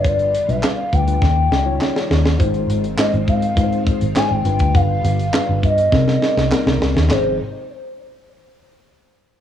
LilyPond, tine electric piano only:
\new Staff \with { instrumentName = "Tine electric piano" } { \time 4/4 \key aes \major \tempo 4 = 102 <g d' f' b'>8 r16 <g d' f' b'>8 r16 <g d' f' b'>16 <g d' f' b'>16 r8. <g ees' f' des''>4 r16 | <aes ees' f' c''>8. r16 <aes ees' f' c''>8. r16 <aes ees' f' ces'' c''>8. r16 <aes ees' f' c''>8 <g d' f' b'>8~ | <g d' f' b'>8. r16 <g d' f' b'>8. r16 <g c' ees' bes'>8. r16 <g c' ees' bes'>8. r16 | <f c' ees' aes'>8 r2. r8 | }